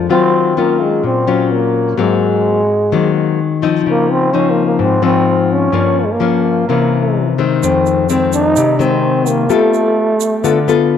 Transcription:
0.09 D#3 F#3 C4 F4
0.57 F#3 A#3 C#4 F4
0.82 G#3
1.03 A#2 C4
1.27 F#3 C#4 F4
1.53 A#3
1.98 G#2 F#3 G#3 A#3 C4
2.92 D#3 F#3 A#3 C4
3.62 F3 C4 D#4
3.86 C#3 A#3
4.11 C4
4.33 F3 C4 C#4 D#4
4.50 A#3
4.66 A#3
4.79 G#2 C4
5.02 F3 C4 D#4
5.53 C#4
5.72 G2 F3 A#3 C#4
6.00 A#3
6.05 G#3
6.13 A#3
6.20 F3 A#3 C#4
6.69 C3 E3 A#3 C#4
7.38 D#3 G#3 C4
7.63 F2 C4, shaker
7.86 shaker
8.09 D#3 G#3 C4, shaker
8.33 D#4, shaker
8.56 C3, shaker
8.79 D#3 G#3 C4, shaker
9.26 A#3, shaker
9.50 G3 A3 B3 F4 A4, shaker
9.74 shaker
10.20 shaker
10.44 D3 B3 F4 A4, shaker
10.68 B3 F4 A4, shaker

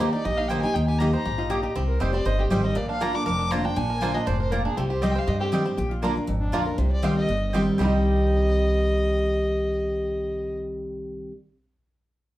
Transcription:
Already playing: D#2 G3 D#4
0.00 D#3 A#3 D#4 G4 C5
0.12 D#4 G4 D5
0.25 A#1 A#2 G4 D#5
0.37 D#4 F5
0.48 D#3 A#3 D#4 G4 C5 D#5 G5 A#5
0.62 D#4 G4 G#5
0.74 D#2 D#3 D#4 G5
0.87 G4 G#5
0.99 D#3 A#3 D#4 G4 D#5 A#5
1.13 D#4 G4 C5 A#5
1.25 A#1 G#2 G4
1.38 D#4 F4
1.50 A#2 A#3 G4 D#5 A#5
1.63 D#4 G4
1.75 C2 C3 C4
1.88 A#4
2.00 F1 D#3 G3 C4 G4 C5 D#5 G5
2.13 C4 G4 D5
2.25 G1 G2 C5 D#5
2.39 G4
2.50 G#1 D#3 G3 C4 G4 C5 D#5 G5
2.64 C4 D#5
2.75 A#1 A#2 A#3 D5
2.89 D4 F5
3.00 D3 A#3 D4 F4 A#4 D5 A#5
3.13 D4 F4 D6
3.26 F1 F2 A#4 D6
3.39 D4
3.50 D3 A#3 D4 F4 C5 D5 A#5
3.64 D4 F4 G5
3.76 A#1 A#2 D4 G#5
3.90 A#4
4.01 D3 A#3 D4 F4 C5 D5 A#5
4.14 D4 F4 D#5
4.26 F1 G#2 C5 D5
4.40 A#4 C5
4.51 A#2 A#3 F4 A#4 D5 A#5
4.65 D4 G#4
4.77 C2 C3 C4 G4
4.90 G4 C5
5.02 D#3 G3 C4 G4 D#5 G5
5.10 G5
5.15 C4 G4 C5
5.19 F5
5.27 G2 G4 D#5
5.40 C4 G4
5.52 D#3 G3 C4 G4 D#5 G5
5.65 C4 G4
5.77 A#1 A#2 G4
5.91 F4
6.02 D3 A#3 D4 F4 A#4 D5 A#5
6.15 D4 F4
6.27 G#1 F2
6.40 D4
6.52 A#1 D3 A#3 D4 F4 A#4 D5 A#5
6.65 D4 F4 A#4
6.78 C2 C3 C5
6.92 D5
7.02 D#3 G3 C4 G4 D#5 F5 G5
7.17 D#5
7.29 G1 G2
7.53 D#3 G3 C4 G4 D#5 G5
7.78 C2 C3 D#3 G3 C4 G4 D#5 G5
7.83 D#4 G4

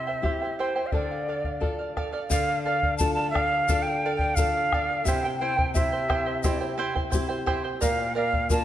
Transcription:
Already playing: C3 E5
0.07 E4 C5 G5
0.22 C4 E4 G4 C5 E5 G5, bombo low
0.42 E4 C5 G5
0.59 E4 G4 C5 E5 G5
0.76 E4 G4 C5 E5 G5
0.86 F5
0.92 D3 A4 D5 F5, bombo low
1.11 D5 F5
1.28 A4 D5 F5
1.44 D5 F5, bombo low
1.60 D4 F4 A4 D5 F5, bombo low
1.79 D5 F5
1.97 A4 D5 F5, bombo rim, bombo low
2.13 A4 D5 F5
2.30 D3 A4 D5 F5, bombo low, shaker
2.48 D5 F5
2.64 A4 D5 F5
2.83 D5 F5, bombo low
2.98 D4 F4 A4 D5 F5 A5, bombo low, shaker
3.14 F5 A5
3.19 D5
3.30 A4 F5
3.34 D5 F5, bombo rim, bombo low
3.53 D5 F5
3.68 D4 F4 A4 D5 F5, bombo low, shaker
3.82 G5
3.87 D5 F5
4.05 A4 D5 F5
4.16 G5, bombo low
4.21 D5 F5
4.35 D4 F4 A4 F5, bombo low, shaker
4.39 A4 D5 F5
4.56 D5 F5
4.73 A4 D5 F5, bombo rim, bombo low
4.91 D5 F5
5.05 C3 E4 G4 C5 E5 G5, bombo low, shaker
5.22 E4 C5 G5
5.38 E4 G4 C5 E5 G5
5.57 E4 C5 G5, bombo low
5.74 C4 E4 G4 C5 E5 G5, bombo low, shaker
5.92 E4 C5 G5
6.09 E4 G4 C5 E5 G5, bombo rim, bombo low
6.26 E4 C5 G5
6.44 C4 E4 G4 C5 E5 G5, bombo low, shaker
6.61 E4 C5 G5
6.78 E4 G4 C5 E5 G5
6.95 E4 C5 G5, bombo low
7.10 C4 E4 C5 E5 G5, bombo low, shaker
7.14 G4
7.29 E4 C5 G5
7.46 E4 G4 C5 E5 G5, bombo rim, bombo low
7.64 E4 C5 G5
7.81 A#2 A#4 D5 F5, bombo low, shaker
7.99 D5 F5
8.15 A#4 D5 F5
8.32 D5 F5, bombo low
8.50 A#3 D4 F4 A#4 D5 F5 A5, bombo low, shaker

